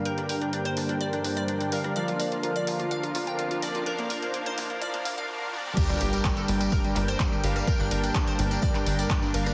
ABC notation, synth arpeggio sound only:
X:1
M:4/4
L:1/16
Q:1/4=126
K:Gm
V:1 name="Synth arpeggio sound"
B D B D D c D D d D D d D D B D | d F d F F d F F f F F g F F d F | B B, B B, B, c B, B, d B, B, f z4 | G G, G G, G, A G, G, B G, G, c G, G, G G, |
B D B D D c D D d D D d D D B D |]